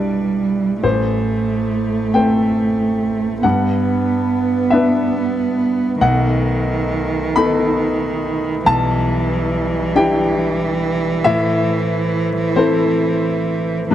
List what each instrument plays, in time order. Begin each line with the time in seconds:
Already playing: grand piano B1 G3 D4 B4 D5 E5, cello G3, harmonium G3 E4 D5
0.84 grand piano A1 C5, harmonium A3 C5, cello A3
2.14 grand piano A3 C4 C5 G5
3.43 grand piano G2 F#5, harmonium B3 D4 B4, cello B3
4.70 grand piano B3 D4 B4 E5
6.01 grand piano B1 F#5, cello D#3, harmonium A3 D#4
7.36 grand piano B3 D#4 A4 B5
8.66 grand piano B1 A5, cello E3, harmonium G3 E4 D5
9.95 grand piano D4 E4 G4 G5
11.24 grand piano A2 E5, harmonium A3 C5
12.56 grand piano C4 E4 A4 C5
13.91 grand piano G2 B4, cello E3, harmonium D5